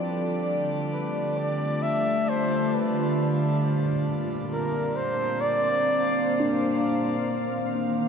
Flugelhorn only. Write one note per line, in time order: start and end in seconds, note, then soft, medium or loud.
0.93 1.39 B4 medium
1.37 1.84 D5 medium
1.83 2.31 E5 loud
2.29 2.76 C5 medium
2.75 3.41 B4 medium
4.53 4.98 A#4 medium
4.96 5.43 C5 medium
5.41 6.76 D5 loud